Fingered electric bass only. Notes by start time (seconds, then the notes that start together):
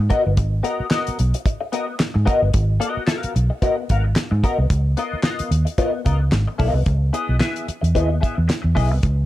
0.27 G1
0.37 G#1
0.80 muted fingered electric bass stroke
1.08 muted fingered electric bass stroke
1.20 B1
2.16 G#2
2.42 G1
2.54 G#1
2.97 muted fingered electric bass stroke
3.24 muted fingered electric bass stroke
3.36 B1
3.90 G#1
4.32 G#2
4.59 C2
4.70 C#2
5.13 muted fingered electric bass stroke
5.40 muted fingered electric bass stroke
5.51 D#2
6.06 C#2
6.32 G#1
6.60 B1
6.74 C2
6.86 C#2
7.29 B1
7.68 muted fingered electric bass stroke
7.83 E2
7.96 D#2
8.38 E2
8.64 E2
8.77 B1
8.91 C2
9.03 C#2